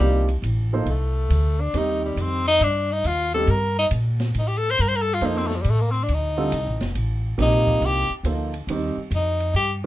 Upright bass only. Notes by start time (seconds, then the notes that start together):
0.00 C2
0.42 A1
0.86 C2
1.29 D2
1.73 D#2
2.16 F2
2.60 G2
3.04 D#2
3.47 G2
3.91 A#2
4.35 A2
4.79 G2
5.21 F2
5.65 A2
6.08 D2
6.52 C2
6.66 A1
6.81 F1
6.95 A1
7.38 A#1
7.81 C2
8.09 muted upright bass stroke
8.23 D2
8.67 D#2
8.96 muted upright bass stroke
9.11 F2
9.54 G2